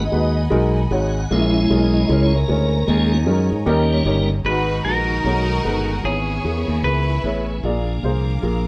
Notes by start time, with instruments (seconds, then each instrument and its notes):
Already playing: upright piano G#2, string section D#5 F#5 G#5 B5
0.05 tonewheel organ D#5
0.12 fingered electric bass D#2, upright piano G#3 D#4 F#4 B4
0.50 fingered electric bass B1, upright piano G#3 D#4 F#4 A#4
0.91 fingered electric bass G#1, upright piano G#3 D#4 F#4 C#5, tonewheel organ F#5
1.30 fingered electric bass A#1, upright piano A#2 G#3 C#4 E4 A#4, tonewheel organ G#3 C#4 E4 E5, string section E4 C#5 A#5
1.70 fingered electric bass B1, upright piano G#3 C#4 E4 A#4, tonewheel organ D#5
2.09 fingered electric bass C#2, upright piano G#3 C#4 E4 A#4, tonewheel organ G#3 C#4 E4 C#5
2.36 tonewheel organ A#4
2.48 fingered electric bass D2, upright piano G#3 C#4 E4 C#5
2.87 fingered electric bass D#2, upright piano D#3 G#3 C#4 D#4 A#4, tonewheel organ G#3 A#3 C#4 G#4, string section D#5 G#5
3.14 tonewheel organ F#4
3.26 fingered electric bass F#2, upright piano G#3 C#4 D#4 A#4
3.52 fingered electric bass G#2
3.66 fingered electric bass D#2, upright piano D#3 G3 C#4 D#4 A#4, tonewheel organ G3 A#3 C#4, string section D#5 G5
3.92 tonewheel organ C#5
4.05 fingered electric bass G1, upright piano G3 C#4 D#4 C#5, tonewheel organ A#4
4.45 fingered electric bass G#1, upright piano G#2 G#3 D#4 F#4 B4, tonewheel organ D#3 G#3 B3 F#4, string section D#4 F#4 B4 F#5 G#5, clean electric guitar B4
4.84 fingered electric bass A#1, upright piano G#3 D#4 F#4 B4, string section D#4 F#4 A#4, clean electric guitar A#4
5.24 fingered electric bass B1, upright piano B2 A3 D#4 G#4 C#5, tonewheel organ D#3 G#3 C#4 G#4, string section F#5 C#6
5.64 fingered electric bass G1, upright piano A3 D#4 G#4 B4
6.03 fingered electric bass G#1, upright piano G#2 B3 E4 G#4 C#5, tonewheel organ E3 B3 C#4 G#4, string section B3 C#4 G#4 E5 B5, clean electric guitar G#4
6.44 fingered electric bass E2, upright piano B3 E4 G#4 A#4
6.68 fingered electric bass D#2
6.83 fingered electric bass C#2, upright piano B3 E4 G#4 A#4, string section E4 B4, clean electric guitar B4
7.24 fingered electric bass A1, upright piano B3 E4 G#4 C#5
7.62 fingered electric bass A#1, upright piano A#2 A#3 F4 G#4 D5, tonewheel organ F3 A#3 D4 G#4, string section F5 A#5 D6
8.03 fingered electric bass C2, upright piano A#3 F4 G#4 C5
8.42 fingered electric bass A#1, upright piano A#3 F4 G#4 A#4